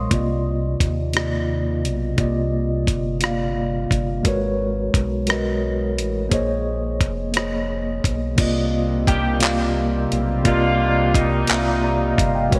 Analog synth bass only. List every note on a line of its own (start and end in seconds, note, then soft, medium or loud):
0.12 0.76 C2 loud
0.81 1.87 D#2 medium
1.85 2.15 B1 medium
2.19 2.90 C2 loud
2.88 3.87 G1 medium
3.92 4.22 G1 medium
4.26 4.90 G#1 medium
4.95 6.00 B1 medium
5.99 6.29 A1 medium
6.32 7.03 A#1 medium
7.01 8.01 F1 medium
8.05 8.36 B1 medium
8.39 10.07 C2 loud
10.13 10.43 B1 loud
10.46 11.45 C2 loud
11.51 12.15 C2 loud
12.19 12.50 G1 loud
12.53 12.60 G#1 loud